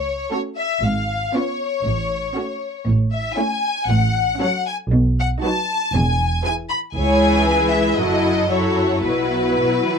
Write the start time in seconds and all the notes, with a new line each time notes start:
Already playing: C#2 C#5
0.31 A3 C#4 F#4 A4 C#5
0.57 E5
0.82 G#1 G#2 F5
1.33 B3 C#4 F4 C#5
1.85 A1 A2
2.35 A3 C#4 F#4 C#5
2.87 A1 A2
3.12 E5
3.36 A3 C#4 E4 C#5 G#5
3.89 A1 A2 F#5
4.40 F#3 C#4 A4 C#5 F#5
4.67 G#5
4.92 B1 B2
5.19 F#5
5.42 F#3 D#4 F#4 B4 A5
5.94 E1 E2 G#5
6.45 E3 E4 G#4 B4 G#5
6.70 B5
6.94 C#2 E3 E4 G#4 G#5
6.98 C#5
7.48 B4
7.71 E5
7.98 F#1 F#2 F#3 E4 F#4 A4 D#5
8.50 F#3 E4 F#4 A4 C#5
9.04 B1 B2 F#3 E4 F#4 B4
9.60 B2
9.87 E3